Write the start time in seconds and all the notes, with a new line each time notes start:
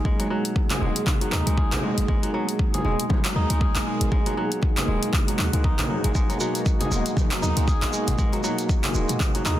Already playing: B2 F#3 G#3 A#3 D#4 G#4
0.05 G#1 G#3, kick, high conga
0.19 F#3, closed hi-hat, muted conga
0.30 F#3
0.45 closed hi-hat
0.56 kick, muted conga
0.70 G#4, clap, closed hi-hat, low conga
0.81 D#1 G#3, muted conga
0.96 closed hi-hat
1.07 kick, clap, muted conga, low conga
1.21 F#3, closed hi-hat
1.32 D#2 D#4, clap, muted conga, high conga, low conga
1.46 C#2 G#3, closed hi-hat, high conga
1.58 G#4, kick
1.72 G#1, clap, closed hi-hat, muted conga, low conga
1.83 G#3, high conga
1.98 G#1, closed hi-hat, muted conga
2.08 G#1 G#3, kick, high conga
2.23 F#3, closed hi-hat, muted conga
2.34 F#3
2.49 closed hi-hat
2.59 kick, muted conga
2.74 G#4, closed hi-hat, high conga, low conga
2.84 D#1 G#3, muted conga
3.00 closed hi-hat
3.10 kick, muted conga, high conga, low conga
3.25 F#3, clap, closed hi-hat
3.35 D#2 D#4, muted conga, high conga
3.50 C#2 G#3, closed hi-hat
3.61 G#4, kick
3.75 G#1, clap, closed hi-hat, muted conga
3.87 G#3
4.01 G#1, closed hi-hat, muted conga
4.12 G#1 G#3, kick, high conga
4.26 F#3, closed hi-hat, muted conga
4.37 F#3
4.52 closed hi-hat
4.62 kick, muted conga
4.77 G#4, clap, closed hi-hat, low conga
4.88 D#1 G#3, muted conga
5.03 closed hi-hat
5.13 kick, clap, muted conga, low conga
5.28 F#3, closed hi-hat
5.38 D#2 F#4, clap, muted conga, high conga, low conga
5.53 C#2 G#3, closed hi-hat, high conga
5.64 D#4, kick
5.79 G#1, clap, closed hi-hat, muted conga, low conga
5.89 F#3, high conga
6.04 G#1 G#3, closed hi-hat, muted conga
6.15 G#1 G#3 F#4, kick, high conga, shekere
6.30 F#3, closed hi-hat, muted conga, shekere
6.40 F#3, shekere
6.55 closed hi-hat, shekere
6.66 kick, muted conga, shekere
6.81 G#4, closed hi-hat, high conga, low conga, shekere
6.92 D#1 G#3, muted conga, shekere
7.06 closed hi-hat, shekere
7.17 kick, muted conga, high conga, low conga, shekere
7.31 F#3, clap, closed hi-hat, shekere
7.42 D#2 D#4, muted conga, high conga, shekere
7.57 C#2 G#3, closed hi-hat, shekere
7.67 G#4, kick, shekere
7.81 G#1, clap, closed hi-hat, muted conga, shekere
7.93 G#3, shekere
8.07 G#1, closed hi-hat, mid tom, muted conga, shekere
8.18 G#1 G#3, kick, high conga, shekere
8.33 F#3, closed hi-hat, muted conga, shekere
8.44 F#3, shekere
8.58 closed hi-hat, shekere
8.69 kick, muted conga, shekere
8.84 G#4, clap, closed hi-hat, low conga
8.94 D#1 G#3, muted conga, shekere
9.08 closed hi-hat, mid tom, shekere
9.20 kick, clap, muted conga, low conga, shekere
9.35 F#3, closed hi-hat, shekere
9.46 D#2 D#4, clap, muted conga, high conga, low conga, shekere